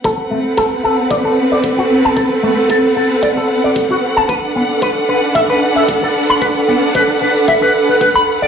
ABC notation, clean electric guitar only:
X:1
M:4/4
L:1/16
Q:"Swing 16ths" 1/4=113
K:Ador
V:1 name="Clean electric guitar"
A z A, z A z A z d A z d z F z a | A z A, z A z A z d A z d z F z a | B z B, z B z B z e B z e z A z b | B z B, z B z B z e B z B B b z d |]